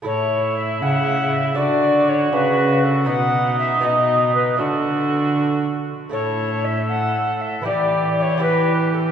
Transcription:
0.02 A2 A3 E4 A4 C#5
0.56 E5
0.82 C#3 F#5
1.33 E5
1.54 D3 A3 F#4 D5
2.09 C#5
2.33 C#3 B4
2.84 A4
3.05 B2 B3 D#4 F#4 F#5
3.59 E5
3.80 B2 B3 D#4 F#4 D#5
4.34 B4
4.56 D3 A3 D4 F#4 A4
6.09 A2 A3 E4 A4 C#5
6.65 E5
6.89 F#5
7.41 E5
7.62 E3 B3 E4 G4
7.66 D5
8.17 D5
8.22 C#5
8.38 B3 E4 G4
8.42 B4
8.93 A4

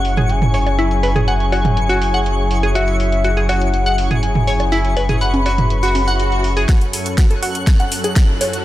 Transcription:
Already playing: F#1 F#3 C#4 E4 G#4 F#5 C#6
0.05 open hi-hat
0.17 G#4, closed hi-hat, mid tom
0.29 G#5, closed hi-hat
0.42 mid tom
0.54 C#5, open hi-hat
0.66 closed hi-hat, high bongo
0.79 E4, closed hi-hat
0.91 closed hi-hat
1.03 B4, open hi-hat
1.16 G#4, closed hi-hat, mid tom
1.28 F#5 G#5, closed hi-hat
1.40 closed hi-hat
1.52 F#4, open hi-hat, high bongo
1.65 closed hi-hat, mid tom
1.77 closed hi-hat
1.89 F#4, closed hi-hat
2.02 open hi-hat
2.14 F#5, closed hi-hat
2.26 closed hi-hat
2.51 open hi-hat
2.63 G#4, closed hi-hat
2.75 F#4 E5, closed hi-hat
2.88 closed hi-hat
3.00 open hi-hat
3.12 closed hi-hat
3.24 F#4, closed hi-hat
3.37 G#4, closed hi-hat
3.49 F#4 F#5, open hi-hat, high bongo
3.62 closed hi-hat
3.74 closed hi-hat
3.86 F#5, closed hi-hat
3.98 open hi-hat
4.11 G#4, closed hi-hat, mid tom
4.23 G#5, closed hi-hat
4.35 mid tom
4.47 C#5, open hi-hat
4.60 closed hi-hat, high bongo
4.72 E4, closed hi-hat
4.85 closed hi-hat
4.97 B4, open hi-hat, high bongo
5.09 G#4, closed hi-hat, mid tom
5.21 F#5 B5, closed hi-hat
5.34 closed hi-hat, high conga
5.46 F#4, open hi-hat, high bongo
5.58 closed hi-hat, mid tom
5.70 closed hi-hat, swell
5.83 F#4, closed hi-hat
5.95 open hi-hat, high conga
6.08 F#5, closed hi-hat
6.20 closed hi-hat
6.32 closed hi-hat
6.44 open hi-hat
6.57 G#4, closed hi-hat
6.69 F#2 F#3 C#4 F#4 A4 F#6, kick, snare, closed hi-hat, riser
6.81 closed hi-hat
6.93 open hi-hat
7.06 closed hi-hat
7.18 F#4, kick, snare, closed hi-hat
7.30 A4, closed hi-hat
7.43 F#4, open hi-hat
7.55 closed hi-hat
7.67 kick, snare, closed hi-hat
7.80 F#5, closed hi-hat
7.92 open hi-hat
8.04 G#4, closed hi-hat
8.16 kick, snare, closed hi-hat
8.41 C#5, open hi-hat
8.53 closed hi-hat

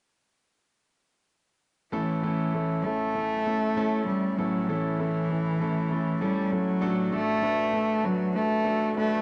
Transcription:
1.92 A1 A2 E3 A3 C#4 E4 A4
2.23 A3 C#4 E4 A4
2.53 A3 C#4 E4 A4
2.84 A3 C#4 E4 A4
3.15 A3 C#4 E4 A4
3.46 A3 C#4 E4 A4
3.76 A3 C#4 E4 A4
4.06 G3 A3 C#4 E4 A4
4.38 A1 A2 F#3 A3 C#4 E4 A4
4.68 E3 A3 C#4 E4 A4
4.99 A3 C#4 E4 A4
5.30 A3 C#4 E4 A4
5.60 A3 C#4 E4 A4
5.91 A3 C#4 E4 A4
6.21 G3 A3 C#4 E4 A4
6.51 F#3 A3 C#4 E4 A4
6.81 A1 A2 A3 D4 F#4 A4
7.11 A3 D4 F#4 A4
7.42 A3 D4 F#4 B4
7.73 A3 D4 F#4 A4
8.04 F#3 A3 D4 F#4 B4
8.34 A3 D4 F#4 B4
8.64 A3 D4 F#4 A4
8.96 A3 D4 F#4 B4

